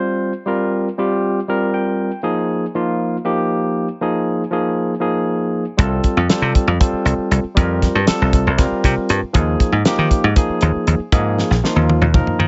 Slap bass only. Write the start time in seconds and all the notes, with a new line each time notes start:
5.79 C2
6.17 F2
6.42 C3
6.67 F2
6.93 muted slap bass stroke
7.05 C2
7.18 muted slap bass stroke
7.31 C2
7.44 muted slap bass stroke
7.57 F2
7.95 G2
8.09 muted slap bass stroke
8.22 C2
8.47 C2
8.72 muted slap bass stroke
8.84 C3
8.97 muted slap bass stroke
9.10 G2
9.23 muted slap bass stroke
9.35 D#2
9.72 G#2
9.98 D#3
10.24 G#2
10.49 muted slap bass stroke
10.62 D#2
10.76 muted slap bass stroke
10.87 D#2
10.99 muted slap bass stroke
11.12 G#2
11.51 A#1
11.76 D#2
12.01 D#2
12.26 muted slap bass stroke
12.39 D#3